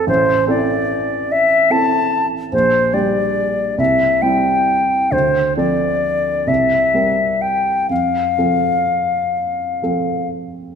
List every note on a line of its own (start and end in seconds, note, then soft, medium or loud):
0.00 0.11 F2 soft
0.00 0.11 C4 soft
0.00 0.10 F4 soft
0.00 0.10 C5 soft
0.07 0.47 A1 soft
0.07 0.48 C5 medium
0.47 1.67 C4 soft
0.47 1.67 E4 soft
0.47 1.67 A4 soft
0.47 1.33 D5 medium
1.32 1.73 E5 medium
1.70 2.48 C4 soft
1.70 2.48 E4 soft
1.70 2.49 A4 soft
1.70 2.27 A5 medium
2.53 2.93 A#1 soft
2.53 2.95 C5 medium
2.93 3.74 G3 soft
2.93 3.75 D4 soft
2.93 3.75 G4 soft
2.93 3.78 D5 soft
3.78 4.21 C2 soft
3.78 4.24 E5 medium
4.22 5.08 G3 soft
4.22 5.09 C4 soft
4.22 5.09 E4 soft
4.22 5.13 G5 medium
5.12 5.55 D2 soft
5.12 5.56 C5 soft
5.57 6.44 F3 soft
5.57 6.44 C4 soft
5.57 6.44 A4 soft
5.57 6.49 D5 medium
6.47 6.93 C2 soft
6.47 7.43 E5 medium
6.94 7.85 G3 soft
6.94 7.86 C4 soft
6.94 7.86 A#4 soft
7.42 7.90 G5 soft
7.90 8.37 F2 soft
7.90 10.28 F5 soft
8.38 9.79 F3 soft
8.38 9.79 C4 soft
8.38 9.79 A4 soft
9.82 10.75 F3 soft
9.82 10.75 C4 soft
9.82 10.75 A4 soft